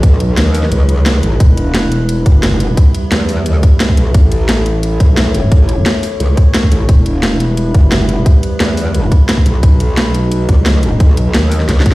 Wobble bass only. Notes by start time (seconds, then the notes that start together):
0.03 B1
0.37 D#2
0.72 C#2
1.23 A1
1.40 E1
2.26 F#1
3.12 E2
3.97 B1
4.14 A1
5.00 B1
5.52 A1
6.20 C#2
6.72 A1
6.89 E1
7.74 F#1
8.60 E2
9.46 B1
9.63 B1
10.49 C#2
11.00 B1
11.34 D#2
11.69 C#2